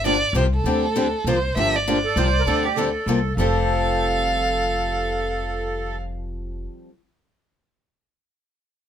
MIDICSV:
0, 0, Header, 1, 5, 480
1, 0, Start_track
1, 0, Key_signature, -1, "major"
1, 0, Tempo, 303337
1, 1027, Time_signature, 3, 2, 24, 8
1, 14053, End_track
2, 0, Start_track
2, 0, Title_t, "Violin"
2, 0, Program_c, 0, 40
2, 111, Note_on_c, 0, 74, 91
2, 537, Note_off_c, 0, 74, 0
2, 587, Note_on_c, 0, 72, 75
2, 703, Note_off_c, 0, 72, 0
2, 851, Note_on_c, 0, 69, 84
2, 2022, Note_on_c, 0, 72, 90
2, 2046, Note_off_c, 0, 69, 0
2, 2484, Note_off_c, 0, 72, 0
2, 2494, Note_on_c, 0, 76, 104
2, 2784, Note_on_c, 0, 74, 82
2, 2808, Note_off_c, 0, 76, 0
2, 4885, Note_off_c, 0, 74, 0
2, 5359, Note_on_c, 0, 77, 83
2, 9434, Note_off_c, 0, 77, 0
2, 14053, End_track
3, 0, Start_track
3, 0, Title_t, "Accordion"
3, 0, Program_c, 1, 21
3, 3238, Note_on_c, 1, 69, 92
3, 3435, Note_on_c, 1, 72, 83
3, 3438, Note_off_c, 1, 69, 0
3, 3791, Note_on_c, 1, 70, 88
3, 3820, Note_off_c, 1, 72, 0
3, 3839, Note_off_c, 1, 70, 0
3, 3889, Note_on_c, 1, 69, 93
3, 4177, Note_on_c, 1, 67, 72
3, 4183, Note_off_c, 1, 69, 0
3, 4378, Note_on_c, 1, 69, 69
3, 4388, Note_off_c, 1, 67, 0
3, 5277, Note_off_c, 1, 69, 0
3, 5344, Note_on_c, 1, 69, 65
3, 9427, Note_off_c, 1, 69, 0
3, 14053, End_track
4, 0, Start_track
4, 0, Title_t, "Steel-string acoustic guitar"
4, 0, Program_c, 2, 25
4, 69, Note_on_c, 2, 50, 72
4, 78, Note_on_c, 2, 53, 69
4, 83, Note_on_c, 2, 58, 76
4, 85, Note_on_c, 2, 62, 86
4, 91, Note_on_c, 2, 67, 82
4, 233, Note_off_c, 2, 50, 0
4, 237, Note_off_c, 2, 53, 0
4, 240, Note_off_c, 2, 58, 0
4, 241, Note_off_c, 2, 62, 0
4, 244, Note_off_c, 2, 67, 0
4, 551, Note_on_c, 2, 53, 74
4, 557, Note_on_c, 2, 48, 75
4, 565, Note_on_c, 2, 65, 76
4, 568, Note_on_c, 2, 67, 89
4, 569, Note_on_c, 2, 58, 78
4, 714, Note_off_c, 2, 53, 0
4, 717, Note_off_c, 2, 48, 0
4, 721, Note_off_c, 2, 65, 0
4, 722, Note_off_c, 2, 67, 0
4, 723, Note_off_c, 2, 58, 0
4, 1036, Note_on_c, 2, 50, 61
4, 1040, Note_on_c, 2, 55, 63
4, 1044, Note_on_c, 2, 62, 72
4, 1047, Note_on_c, 2, 67, 73
4, 1049, Note_on_c, 2, 60, 63
4, 1333, Note_off_c, 2, 50, 0
4, 1336, Note_off_c, 2, 55, 0
4, 1337, Note_off_c, 2, 62, 0
4, 1339, Note_off_c, 2, 67, 0
4, 1340, Note_off_c, 2, 60, 0
4, 1511, Note_on_c, 2, 55, 73
4, 1517, Note_on_c, 2, 50, 71
4, 1523, Note_on_c, 2, 60, 70
4, 1523, Note_on_c, 2, 62, 77
4, 1527, Note_on_c, 2, 67, 80
4, 1674, Note_off_c, 2, 55, 0
4, 1676, Note_off_c, 2, 50, 0
4, 1680, Note_off_c, 2, 60, 0
4, 1680, Note_off_c, 2, 62, 0
4, 1682, Note_off_c, 2, 67, 0
4, 2010, Note_on_c, 2, 48, 79
4, 2017, Note_on_c, 2, 53, 80
4, 2018, Note_on_c, 2, 65, 92
4, 2018, Note_on_c, 2, 67, 79
4, 2020, Note_on_c, 2, 58, 77
4, 2163, Note_off_c, 2, 48, 0
4, 2166, Note_off_c, 2, 53, 0
4, 2167, Note_off_c, 2, 65, 0
4, 2167, Note_off_c, 2, 67, 0
4, 2168, Note_off_c, 2, 58, 0
4, 2481, Note_on_c, 2, 50, 62
4, 2486, Note_on_c, 2, 58, 67
4, 2489, Note_on_c, 2, 53, 62
4, 2495, Note_on_c, 2, 62, 71
4, 2496, Note_on_c, 2, 67, 68
4, 2776, Note_off_c, 2, 50, 0
4, 2778, Note_off_c, 2, 58, 0
4, 2780, Note_off_c, 2, 53, 0
4, 2783, Note_off_c, 2, 62, 0
4, 2783, Note_off_c, 2, 67, 0
4, 2967, Note_on_c, 2, 58, 77
4, 2967, Note_on_c, 2, 62, 78
4, 2968, Note_on_c, 2, 50, 76
4, 2972, Note_on_c, 2, 53, 80
4, 2975, Note_on_c, 2, 67, 82
4, 3121, Note_off_c, 2, 58, 0
4, 3121, Note_off_c, 2, 62, 0
4, 3122, Note_off_c, 2, 50, 0
4, 3124, Note_off_c, 2, 53, 0
4, 3125, Note_off_c, 2, 67, 0
4, 3432, Note_on_c, 2, 53, 82
4, 3433, Note_on_c, 2, 48, 77
4, 3439, Note_on_c, 2, 58, 72
4, 3442, Note_on_c, 2, 65, 81
4, 3444, Note_on_c, 2, 67, 86
4, 3593, Note_off_c, 2, 53, 0
4, 3594, Note_off_c, 2, 48, 0
4, 3597, Note_off_c, 2, 58, 0
4, 3598, Note_off_c, 2, 65, 0
4, 3599, Note_off_c, 2, 67, 0
4, 3911, Note_on_c, 2, 55, 67
4, 3916, Note_on_c, 2, 50, 57
4, 3919, Note_on_c, 2, 60, 63
4, 3920, Note_on_c, 2, 62, 65
4, 3924, Note_on_c, 2, 67, 62
4, 4210, Note_off_c, 2, 55, 0
4, 4213, Note_off_c, 2, 50, 0
4, 4214, Note_off_c, 2, 60, 0
4, 4215, Note_off_c, 2, 62, 0
4, 4217, Note_off_c, 2, 67, 0
4, 4392, Note_on_c, 2, 50, 67
4, 4400, Note_on_c, 2, 60, 80
4, 4405, Note_on_c, 2, 62, 77
4, 4406, Note_on_c, 2, 55, 69
4, 4413, Note_on_c, 2, 67, 74
4, 4553, Note_off_c, 2, 50, 0
4, 4557, Note_off_c, 2, 60, 0
4, 4560, Note_off_c, 2, 55, 0
4, 4560, Note_off_c, 2, 62, 0
4, 4563, Note_off_c, 2, 67, 0
4, 4873, Note_on_c, 2, 48, 64
4, 4883, Note_on_c, 2, 53, 81
4, 4886, Note_on_c, 2, 65, 84
4, 4887, Note_on_c, 2, 67, 75
4, 4889, Note_on_c, 2, 58, 77
4, 5034, Note_off_c, 2, 48, 0
4, 5039, Note_off_c, 2, 53, 0
4, 5040, Note_off_c, 2, 65, 0
4, 5041, Note_off_c, 2, 67, 0
4, 5042, Note_off_c, 2, 58, 0
4, 5349, Note_on_c, 2, 53, 73
4, 5358, Note_on_c, 2, 55, 72
4, 5370, Note_on_c, 2, 60, 82
4, 5377, Note_on_c, 2, 67, 89
4, 5388, Note_on_c, 2, 69, 82
4, 10888, Note_off_c, 2, 53, 0
4, 10897, Note_off_c, 2, 55, 0
4, 10909, Note_off_c, 2, 60, 0
4, 10916, Note_off_c, 2, 67, 0
4, 10926, Note_off_c, 2, 69, 0
4, 14053, End_track
5, 0, Start_track
5, 0, Title_t, "Upright bass"
5, 0, Program_c, 3, 32
5, 0, Note_on_c, 3, 31, 78
5, 347, Note_off_c, 3, 31, 0
5, 521, Note_on_c, 3, 36, 94
5, 915, Note_off_c, 3, 36, 0
5, 1011, Note_on_c, 3, 38, 78
5, 1784, Note_off_c, 3, 38, 0
5, 1968, Note_on_c, 3, 36, 85
5, 2359, Note_off_c, 3, 36, 0
5, 2471, Note_on_c, 3, 31, 77
5, 3236, Note_off_c, 3, 31, 0
5, 3417, Note_on_c, 3, 36, 93
5, 3804, Note_off_c, 3, 36, 0
5, 3896, Note_on_c, 3, 38, 73
5, 4667, Note_off_c, 3, 38, 0
5, 4846, Note_on_c, 3, 36, 86
5, 5237, Note_off_c, 3, 36, 0
5, 5332, Note_on_c, 3, 29, 82
5, 10528, Note_off_c, 3, 29, 0
5, 14053, End_track
0, 0, End_of_file